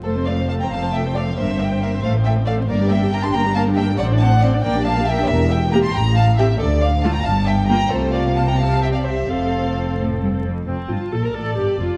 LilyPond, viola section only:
\new Staff \with { instrumentName = "Viola section" } { \time 6/8 \key f \major \tempo 4. = 91 << { a'16 c''16 a'16 c''16 a'16 c''16 a'16 c''16 a'16 c''16 a'16 c''16 | bes'16 c''16 bes'16 c''16 bes'16 c''16 a'16 c''16 a'16 c''16 a'16 c''16 | bes'16 g'16 bes'16 g'16 bes'16 g'16 bes'16 g'16 bes'16 g'16 bes'16 g'16 | c''16 d''16 c''16 d''16 c''16 d''16 bes'16 g'16 bes'16 g'16 bes'16 g'16 |
r4 g'16 r4 r16 g'16 r16 | r4 f'16 r4 r16 f'16 r16 | f'4. g'4. | a'2~ a'8 r8 |
c'8 f'8 a'16 bes'16 a'8 g'8 f'8 | } \\ { a16 c'16 a16 c'16 a16 c'16 a16 c'16 a16 c'16 a16 c'16 | bes16 c'16 bes16 c'16 bes16 c'16 a16 c'16 a16 c'16 a16 c'16 | bes16 d'16 bes16 d'16 bes16 d'16 bes16 d'16 bes16 d'16 bes16 d'16 | c'16 d'16 c'16 d'16 c'16 d'16 bes16 d'16 bes16 d'16 bes16 d'16 |
r4 bes16 r4 r16 c'16 r16 | r4 a16 r4 r16 bes16 r16 | a8. bes8. c'4. | c'2~ c'8 r8 |
r2. | } >> }